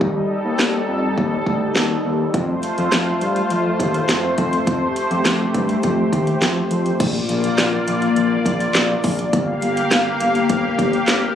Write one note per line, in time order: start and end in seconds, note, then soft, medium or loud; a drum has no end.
0.00 0.21 D#2 loud
0.00 2.30 G3 medium
0.00 2.30 D#4 medium
0.00 2.32 A4 medium
0.00 kick loud
0.45 0.55 D#2 medium
0.59 0.80 D#2 loud
0.59 snare loud
0.88 1.09 F2 loud
1.18 1.38 D#2 loud
1.18 kick medium
1.46 1.67 D2 medium
1.46 kick medium
1.76 1.96 D#2 loud
1.76 snare loud
2.05 2.25 D#2 medium
2.34 2.54 F2 loud
2.34 6.96 A3 medium
2.34 4.65 F4 medium
2.34 6.96 C5 medium
2.34 kick loud
2.34 closed hi-hat medium
2.63 closed hi-hat medium
2.78 2.88 F2 loud
2.78 closed hi-hat medium
2.92 3.13 F2 loud
2.92 snare loud
2.92 closed hi-hat medium
3.21 3.42 G2 medium
3.21 closed hi-hat medium
3.36 closed hi-hat soft
3.50 3.71 F2 medium
3.50 closed hi-hat medium
3.80 4.00 D#2 medium
3.80 kick medium
3.80 closed hi-hat medium
3.94 closed hi-hat soft
4.09 4.29 F2 medium
4.09 snare loud
4.09 closed hi-hat medium
4.38 4.58 F2 loud
4.38 kick medium
4.38 closed hi-hat medium
4.53 closed hi-hat medium
4.67 4.88 F2 loud
4.67 6.98 G4 medium
4.67 kick loud
4.67 closed hi-hat medium
4.96 closed hi-hat medium
5.11 5.21 F2 loud
5.11 closed hi-hat medium
5.25 5.46 F2 loud
5.25 snare loud
5.25 closed hi-hat medium
5.54 5.75 G2 medium
5.54 kick medium
5.54 closed hi-hat medium
5.69 closed hi-hat soft
5.83 6.04 F2 loud
5.83 kick medium
5.83 closed hi-hat medium
6.13 6.33 D#2 medium
6.13 kick medium
6.13 closed hi-hat medium
6.27 closed hi-hat soft
6.42 6.62 F2 loud
6.42 snare loud
6.42 closed hi-hat medium
6.71 6.91 F2 medium
6.71 closed hi-hat medium
6.86 closed hi-hat medium
7.00 7.21 A#1 loud
7.00 9.31 A#3 medium
7.00 9.31 F4 medium
7.00 9.31 D5 medium
7.00 kick loud
7.00 closed hi-hat medium
7.00 crash loud
7.29 7.50 A#1 loud
7.29 closed hi-hat medium
7.44 closed hi-hat medium
7.58 7.79 A#1 loud
7.58 snare loud
7.58 closed hi-hat medium
7.88 8.08 A#1 loud
7.88 closed hi-hat medium
8.02 closed hi-hat soft
8.16 8.37 A#1 loud
8.16 closed hi-hat medium
8.46 8.66 A#1 loud
8.46 kick medium
8.46 closed hi-hat medium
8.60 closed hi-hat soft
8.75 8.95 A#1 loud
8.75 snare loud
8.75 clap loud
8.75 closed hi-hat medium
9.04 9.24 A#1 loud
9.04 kick medium
9.04 open hi-hat medium
9.19 closed hi-hat medium
9.33 9.54 G1 loud
9.33 11.35 A#3 medium
9.33 11.35 G4 medium
9.33 11.35 F5 loud
9.33 kick loud
9.33 closed hi-hat medium
9.62 9.83 G1 loud
9.62 closed hi-hat medium
9.77 closed hi-hat medium
9.91 10.12 G1 loud
9.91 snare loud
9.91 closed hi-hat medium
10.20 10.41 G1 loud
10.20 closed hi-hat medium
10.35 closed hi-hat soft
10.49 10.70 G1 loud
10.49 kick medium
10.49 closed hi-hat medium
10.79 10.99 G1 loud
10.79 kick medium
10.79 closed hi-hat medium
10.93 closed hi-hat soft
11.08 11.28 G1 loud
11.08 snare loud
11.08 clap loud
11.08 closed hi-hat medium